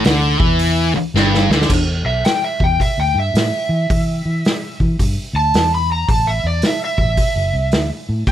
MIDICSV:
0, 0, Header, 1, 7, 480
1, 0, Start_track
1, 0, Tempo, 548948
1, 1484, Time_signature, 4, 2, 24, 8
1, 7272, End_track
2, 0, Start_track
2, 0, Title_t, "Electric slide guitar"
2, 0, Program_c, 0, 29
2, 1801, Note_on_c, 0, 76, 90
2, 1958, Note_off_c, 0, 76, 0
2, 1968, Note_on_c, 0, 79, 74
2, 2122, Note_off_c, 0, 79, 0
2, 2138, Note_on_c, 0, 76, 87
2, 2287, Note_off_c, 0, 76, 0
2, 2306, Note_on_c, 0, 79, 72
2, 2451, Note_off_c, 0, 79, 0
2, 2462, Note_on_c, 0, 76, 87
2, 2609, Note_off_c, 0, 76, 0
2, 2621, Note_on_c, 0, 79, 77
2, 2769, Note_off_c, 0, 79, 0
2, 2795, Note_on_c, 0, 76, 91
2, 4187, Note_off_c, 0, 76, 0
2, 4688, Note_on_c, 0, 81, 88
2, 4998, Note_off_c, 0, 81, 0
2, 5025, Note_on_c, 0, 83, 86
2, 5171, Note_off_c, 0, 83, 0
2, 5177, Note_on_c, 0, 82, 77
2, 5328, Note_off_c, 0, 82, 0
2, 5334, Note_on_c, 0, 81, 77
2, 5484, Note_on_c, 0, 76, 89
2, 5486, Note_off_c, 0, 81, 0
2, 5641, Note_off_c, 0, 76, 0
2, 5655, Note_on_c, 0, 74, 76
2, 5806, Note_off_c, 0, 74, 0
2, 5827, Note_on_c, 0, 76, 74
2, 5972, Note_off_c, 0, 76, 0
2, 5986, Note_on_c, 0, 76, 94
2, 6906, Note_off_c, 0, 76, 0
2, 7272, End_track
3, 0, Start_track
3, 0, Title_t, "Distorted electric guitar"
3, 0, Program_c, 1, 30
3, 47, Note_on_c, 1, 50, 90
3, 348, Note_off_c, 1, 50, 0
3, 348, Note_on_c, 1, 52, 106
3, 822, Note_off_c, 1, 52, 0
3, 1010, Note_on_c, 1, 43, 101
3, 1307, Note_off_c, 1, 43, 0
3, 1319, Note_on_c, 1, 50, 91
3, 1482, Note_off_c, 1, 50, 0
3, 7272, End_track
4, 0, Start_track
4, 0, Title_t, "Fingered electric bass"
4, 0, Program_c, 2, 33
4, 51, Note_on_c, 2, 38, 91
4, 336, Note_off_c, 2, 38, 0
4, 352, Note_on_c, 2, 40, 92
4, 799, Note_off_c, 2, 40, 0
4, 997, Note_on_c, 2, 31, 94
4, 1288, Note_off_c, 2, 31, 0
4, 1305, Note_on_c, 2, 38, 94
4, 1468, Note_off_c, 2, 38, 0
4, 1483, Note_on_c, 2, 40, 93
4, 1764, Note_off_c, 2, 40, 0
4, 1783, Note_on_c, 2, 35, 72
4, 1943, Note_off_c, 2, 35, 0
4, 2276, Note_on_c, 2, 40, 86
4, 2430, Note_off_c, 2, 40, 0
4, 2604, Note_on_c, 2, 38, 76
4, 2743, Note_off_c, 2, 38, 0
4, 2752, Note_on_c, 2, 43, 87
4, 2908, Note_off_c, 2, 43, 0
4, 2921, Note_on_c, 2, 45, 83
4, 3063, Note_off_c, 2, 45, 0
4, 3228, Note_on_c, 2, 52, 93
4, 3386, Note_off_c, 2, 52, 0
4, 3410, Note_on_c, 2, 52, 91
4, 3689, Note_off_c, 2, 52, 0
4, 3720, Note_on_c, 2, 52, 69
4, 3873, Note_off_c, 2, 52, 0
4, 4200, Note_on_c, 2, 52, 88
4, 4353, Note_off_c, 2, 52, 0
4, 4370, Note_on_c, 2, 43, 95
4, 4509, Note_off_c, 2, 43, 0
4, 4665, Note_on_c, 2, 38, 80
4, 4825, Note_off_c, 2, 38, 0
4, 4848, Note_on_c, 2, 40, 103
4, 5292, Note_off_c, 2, 40, 0
4, 5323, Note_on_c, 2, 33, 91
4, 5605, Note_off_c, 2, 33, 0
4, 5629, Note_on_c, 2, 40, 75
4, 5787, Note_off_c, 2, 40, 0
4, 6104, Note_on_c, 2, 33, 85
4, 6264, Note_off_c, 2, 33, 0
4, 6433, Note_on_c, 2, 30, 83
4, 6576, Note_off_c, 2, 30, 0
4, 6590, Note_on_c, 2, 36, 88
4, 6746, Note_off_c, 2, 36, 0
4, 6765, Note_on_c, 2, 38, 88
4, 6905, Note_off_c, 2, 38, 0
4, 7072, Note_on_c, 2, 45, 96
4, 7227, Note_off_c, 2, 45, 0
4, 7231, Note_on_c, 2, 45, 92
4, 7272, Note_off_c, 2, 45, 0
4, 7272, End_track
5, 0, Start_track
5, 0, Title_t, "Muted distorted electric guitar strokes"
5, 829, Note_on_c, 9, 29, 53
5, 917, Note_off_c, 9, 29, 0
5, 7272, End_track
6, 0, Start_track
6, 0, Title_t, "Muted fingered electric bass strokes"
6, 839, Note_on_c, 9, 29, 42
6, 926, Note_off_c, 9, 29, 0
6, 7272, End_track
7, 0, Start_track
7, 0, Title_t, "Drums"
7, 38, Note_on_c, 9, 46, 59
7, 51, Note_on_c, 9, 38, 113
7, 125, Note_off_c, 9, 46, 0
7, 138, Note_off_c, 9, 38, 0
7, 348, Note_on_c, 9, 36, 107
7, 436, Note_off_c, 9, 36, 0
7, 516, Note_on_c, 9, 46, 59
7, 604, Note_off_c, 9, 46, 0
7, 1013, Note_on_c, 9, 38, 62
7, 1100, Note_off_c, 9, 38, 0
7, 1174, Note_on_c, 9, 38, 58
7, 1262, Note_off_c, 9, 38, 0
7, 1324, Note_on_c, 9, 38, 92
7, 1412, Note_off_c, 9, 38, 0
7, 1413, Note_on_c, 9, 38, 91
7, 1484, Note_on_c, 9, 36, 103
7, 1484, Note_on_c, 9, 49, 107
7, 1500, Note_off_c, 9, 38, 0
7, 1571, Note_off_c, 9, 36, 0
7, 1572, Note_off_c, 9, 49, 0
7, 1965, Note_on_c, 9, 46, 51
7, 1978, Note_on_c, 9, 38, 100
7, 2052, Note_off_c, 9, 46, 0
7, 2065, Note_off_c, 9, 38, 0
7, 2275, Note_on_c, 9, 36, 84
7, 2362, Note_off_c, 9, 36, 0
7, 2448, Note_on_c, 9, 36, 79
7, 2456, Note_on_c, 9, 46, 51
7, 2535, Note_off_c, 9, 36, 0
7, 2543, Note_off_c, 9, 46, 0
7, 2932, Note_on_c, 9, 46, 55
7, 2945, Note_on_c, 9, 38, 104
7, 3019, Note_off_c, 9, 46, 0
7, 3032, Note_off_c, 9, 38, 0
7, 3411, Note_on_c, 9, 36, 108
7, 3411, Note_on_c, 9, 46, 56
7, 3498, Note_off_c, 9, 36, 0
7, 3498, Note_off_c, 9, 46, 0
7, 3890, Note_on_c, 9, 46, 54
7, 3903, Note_on_c, 9, 38, 107
7, 3977, Note_off_c, 9, 46, 0
7, 3990, Note_off_c, 9, 38, 0
7, 4198, Note_on_c, 9, 36, 76
7, 4286, Note_off_c, 9, 36, 0
7, 4366, Note_on_c, 9, 36, 75
7, 4367, Note_on_c, 9, 46, 55
7, 4454, Note_off_c, 9, 36, 0
7, 4454, Note_off_c, 9, 46, 0
7, 4844, Note_on_c, 9, 46, 59
7, 4857, Note_on_c, 9, 38, 98
7, 4931, Note_off_c, 9, 46, 0
7, 4944, Note_off_c, 9, 38, 0
7, 5321, Note_on_c, 9, 36, 109
7, 5322, Note_on_c, 9, 46, 60
7, 5409, Note_off_c, 9, 36, 0
7, 5410, Note_off_c, 9, 46, 0
7, 5788, Note_on_c, 9, 46, 58
7, 5801, Note_on_c, 9, 38, 100
7, 5875, Note_off_c, 9, 46, 0
7, 5888, Note_off_c, 9, 38, 0
7, 6104, Note_on_c, 9, 36, 83
7, 6191, Note_off_c, 9, 36, 0
7, 6271, Note_on_c, 9, 46, 59
7, 6273, Note_on_c, 9, 36, 78
7, 6358, Note_off_c, 9, 46, 0
7, 6361, Note_off_c, 9, 36, 0
7, 6746, Note_on_c, 9, 46, 55
7, 6759, Note_on_c, 9, 38, 108
7, 6834, Note_off_c, 9, 46, 0
7, 6847, Note_off_c, 9, 38, 0
7, 7229, Note_on_c, 9, 46, 51
7, 7232, Note_on_c, 9, 36, 106
7, 7272, Note_off_c, 9, 36, 0
7, 7272, Note_off_c, 9, 46, 0
7, 7272, End_track
0, 0, End_of_file